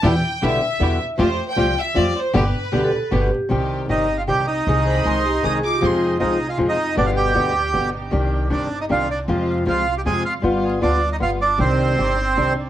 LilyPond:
<<
  \new Staff \with { instrumentName = "Violin section" } { \time 3/4 \key g \mixolydian \tempo 4 = 156 g''4 e''4. r8 | c''8. g''8. e''8 d''8 c''8 | b'2~ b'8 r8 | \key c \minor r2. |
r8 b''8 c'''4 ees'''8 d'''8 | c'''8. r2 r16 | r2. | r2. |
r2. | r2. | r2. | }
  \new Staff \with { instrumentName = "Bandoneon" } { \time 3/4 \key g \mixolydian r2. | r2. | r2. | \key c \minor r4 <ees' ees''>8. <f' f''>16 <g' g''>8 <ees' ees''>8~ |
<ees' ees''>2~ <ees' ees''>8 r8 | r4 <ees' ees''>8. <f' f''>8 <ees' ees''>8. | <d' d''>16 <f' f''>16 <g' g''>2 r8 | r4 <d' d''>8. <ees' ees''>16 <f' f''>8 <d' d''>8 |
r4 <f' f''>8. <g' g''>16 <aes' aes''>8 <f' f''>8 | r4 <d' d''>8. <ees' ees''>16 <f' f''>8 <d' d''>8 | <c' c''>2~ <c' c''>8 r8 | }
  \new Staff \with { instrumentName = "Vibraphone" } { \time 3/4 \key g \mixolydian r2. | r2. | r4 g'16 a'8. b'16 g'8. | \key c \minor r2. |
r8 c''4 g'8 aes'8 f'16 g'16 | aes'8. r2 r16 | r2. | r2. |
r2. | r2. | r2. | }
  \new Staff \with { instrumentName = "String section" } { \time 3/4 \key g \mixolydian <d' e' g'>8 r8 <d' e' g'>8 r8 <d' e' g'>8 r8 | <a f' g'>8 r8 <a f' g'>8 r8 <a f' g'>8 r8 | <b d' g'>8 r8 <b d' g'>8 r8 <b d' g'>8 r8 | \key c \minor <c' ees' g'>4 <c' ees' g'>4 <c' ees' g'>4 |
<c' ees' aes'>4 <c' ees' aes'>4 <c' ees' aes'>4 | <c' f' aes'>4 <c' f' aes'>4 <c' f' aes'>4 | <b d' g'>4 <b d' g'>4 <b d' g'>4 | <c' d'>4 <c' d' ees'>4 <c' d' ees'>4 |
<aes c' f'>4 <aes c' f'>4 <aes c' f'>4 | <g b f'>4 <g b f'>4 <g b f'>4 | <c' d'>4 <c' d' ees'>4 <c' d' ees'>4 | }
  \new Staff \with { instrumentName = "Nylon-string guitar" } { \clef bass \time 3/4 \key g \mixolydian <b, d g b e'>16 r8. <b, d g b e'>8 r8 <b, d g b e'>8 r8 | <f g c' f'>16 r8. <f g c' f'>8 r8 <f g c' f'>8 r8 | <b, d g b g'>16 r8. <b, d g b g'>8 r8 <b, d g b g'>8 r8 | \key c \minor <c ees g c' g'>4 <c ees g c' g'>8 r8 <c ees g c' g'>8 r8 |
<c ees aes c' aes'>4 <c ees aes c' aes'>8 r8 <c ees aes c' aes'>8 r8 | <c f aes c' f'>4 <c f aes c' f'>8 r8 <c f aes c' f'>8 r8 | <b, d g b g'>4 <b, d g b g'>8 r8 <b, d g b g'>8 r8 | <c ees g d' g'>4 <c ees g d' g'>8 r8 <c ees g d' g'>8 r8 |
<c f aes c' f'>4 <c f aes c' f'>8 r8 <c f aes c' f'>8 r8 | <g b f'>4 <g b f'>8 r8 <g b f'>8 r8 | <c ees g d' g'>4 <c ees g d' g'>8 r8 <c ees g d' g'>8 r8 | }
  \new Staff \with { instrumentName = "Upright bass" } { \clef bass \time 3/4 \key g \mixolydian e,8 r8 b,,8 r8 e,8 r8 | f,8 r8 c,8 r8 f,8 r8 | g,,8 r8 d,8 r8 g,,8 r8 | \key c \minor c,4 g,,4 c,4 |
c,4 c,4 c,4 | f,4 c,4 f,4 | g,,4 d,4 g,,4 | c,4 g,,4 c,4 |
f,4 c,4 f,4 | g,,4 d,4 g,,4 | c,4 g,,4 c,4 | }
>>